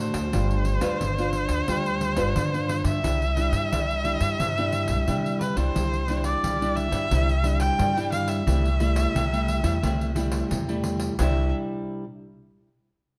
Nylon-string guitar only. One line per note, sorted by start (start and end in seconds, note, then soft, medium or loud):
0.00 0.30 A2 medium
0.00 0.28 A3 medium
0.00 0.28 D4 medium
0.00 0.28 F#4 medium
0.32 0.97 G3 medium
0.32 0.78 D4 medium
0.32 0.78 F4 medium
0.81 1.11 D4 medium
0.81 1.11 F4 medium
0.81 1.11 B4 medium
1.01 1.65 D3 medium
1.18 1.63 D4 medium
1.18 1.64 F4 medium
1.68 2.32 G3 medium
1.68 2.14 D4 medium
1.68 2.14 F4 soft
2.16 2.46 D4 medium
2.16 2.47 F4 medium
2.16 2.47 B4 medium
2.36 3.00 D3 medium
2.54 2.99 D4 medium
2.54 2.99 F4 medium
3.03 3.68 C3 soft
3.03 3.24 G3 medium
3.03 3.24 D4 soft
3.03 3.24 E4 medium
3.36 3.71 G3 medium
3.36 3.81 D4 soft
3.36 3.81 E4 medium
3.72 4.02 G3 medium
4.03 4.50 G3 soft
4.03 4.51 D4 medium
4.03 4.51 E4 medium
4.39 5.04 C3 medium
4.58 5.03 G3 medium
4.58 5.03 D4 medium
4.58 5.03 E4 medium
5.07 5.55 G3 medium
5.07 5.40 D4 medium
5.07 5.40 E4 medium
5.56 6.03 G3 medium
5.56 6.03 D4 medium
5.56 6.03 E4 medium
5.75 6.40 C3 medium
6.09 6.42 G3 medium
6.09 6.55 D4 medium
6.09 6.55 E4 medium
6.44 6.60 G3 medium
6.61 6.89 G3 medium
6.61 6.90 D4 medium
6.61 6.90 E4 medium
6.91 7.04 G3 medium
6.91 7.04 D4 soft
6.91 7.05 E4 medium
7.11 7.76 C3 medium
7.11 7.31 G3 medium
7.11 7.32 D4 medium
7.11 7.32 E4 medium
7.43 7.77 G3 medium
7.43 7.90 D4 medium
7.43 7.90 E4 medium
7.78 7.95 G3 medium
7.97 8.42 G3 medium
7.97 8.42 D4 medium
7.97 8.42 E4 medium
8.47 9.12 C3 medium
8.47 8.67 G3 medium
8.47 8.67 A3 medium
8.47 8.68 E4 medium
8.80 9.26 G3 medium
8.80 9.26 A3 medium
8.80 9.27 E4 medium
9.15 9.80 C3 medium
9.32 9.61 G3 medium
9.32 9.61 A3 medium
9.32 9.61 E4 medium
9.63 9.76 G3 medium
9.63 9.76 A3 medium
9.63 9.77 E4 medium
9.82 10.47 C3 medium
9.82 10.11 G3 medium
9.82 10.12 A3 medium
9.82 10.12 E4 medium
10.15 10.62 G3 medium
10.15 10.62 A3 medium
10.15 10.62 E4 medium
10.51 11.15 C3 medium
10.68 11.14 G3 medium
10.68 11.14 A3 medium
10.68 11.14 E4 medium
11.19 12.04 C3 medium
11.19 12.04 G3 medium
11.19 12.04 D4 medium
11.19 12.04 E4 medium